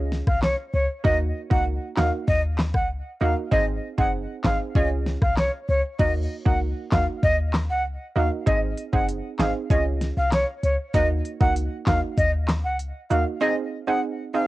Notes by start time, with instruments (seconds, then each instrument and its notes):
Already playing: 808-style bass C#2, synth pluck C#4 F4 G#4
0.12 snare
0.27 808-style bass C2, flute F5, kick, cross-stick
0.42 flute C#5, snare, clap
0.73 808-style bass C#2, flute C#5
1.04 808-style bass D#2, synth pluck A#3 D#4 F#4, flute D#5, kick
1.50 808-style bass C#2, synth pluck A#3 D#4 F#4, flute F#5, kick
1.97 808-style bass D#2, synth pluck A#3 D#4 F#4, flute F5, snare, clap
2.28 808-style bass D#2, flute D#5, kick
2.58 snare, clap
2.74 808-style bass C#2, flute F#5, kick, cross-stick
3.21 808-style bass D#2, synth pluck A#3 D#4 F#4, flute F5
3.51 808-style bass G#1, synth pluck C4 D#4 G#4, flute D#5, kick
3.98 808-style bass F#1, synth pluck C4 D#4 G#4, flute F#5, kick
4.44 808-style bass G#1, synth pluck C4 D#4 G#4, flute F5, kick, snare, clap
4.75 808-style bass C#2, synth pluck C#4 F4 G#4, flute D#5, kick
5.06 snare
5.22 808-style bass C2, flute F5, kick, cross-stick
5.37 flute C#5, snare, clap
5.69 808-style bass C#2, flute C#5
5.99 808-style bass D#2, synth pluck A#3 D#4 F#4, flute D#5, kick, crash
6.45 808-style bass C#2, synth pluck A#3 D#4 F#4, flute F#5, kick
6.92 808-style bass D#2, synth pluck A#3 D#4 F#4, flute F5, kick, snare, clap
7.23 808-style bass D#2, flute D#5, kick
7.53 snare, clap
7.70 808-style bass C#2, flute F#5
8.16 808-style bass D#2, synth pluck A#3 D#4 F#4, flute F5
8.46 808-style bass G#1, synth pluck C4 D#4 G#4, flute D#5, kick, closed hi-hat
8.78 closed hi-hat
8.93 808-style bass F#1, synth pluck C4 D#4 G#4, flute F#5, kick
9.09 closed hi-hat
9.39 808-style bass G#1, synth pluck C4 D#4 G#4, flute F5, snare, clap, closed hi-hat
9.70 808-style bass C#2, synth pluck C#4 F4 G#4, flute D#5, kick, closed hi-hat
10.01 snare, closed hi-hat
10.17 808-style bass C2, flute F5
10.32 flute C#5, snare, clap, closed hi-hat
10.63 808-style bass C#2, flute C#5, closed hi-hat
10.94 808-style bass D#2, synth pluck A#3 D#4 F#4, flute D#5, kick, closed hi-hat
11.25 closed hi-hat
11.40 808-style bass C#2, synth pluck A#3 D#4 F#4, flute F#5, kick
11.56 closed hi-hat
11.87 808-style bass D#2, synth pluck A#3 D#4 F#4, flute F5, kick, snare, clap, closed hi-hat
12.18 808-style bass D#2, flute D#5, kick, closed hi-hat
12.48 snare, clap, closed hi-hat
12.64 808-style bass C#2, flute F#5
12.79 closed hi-hat
13.10 808-style bass D#2, synth pluck A#3 D#4 F#4, flute F5, closed hi-hat
13.41 synth pluck C4 D#4 G#4, flute D#5
13.87 synth pluck C4 D#4 G#4, flute F#5
14.34 synth pluck C4 D#4 G#4, flute F5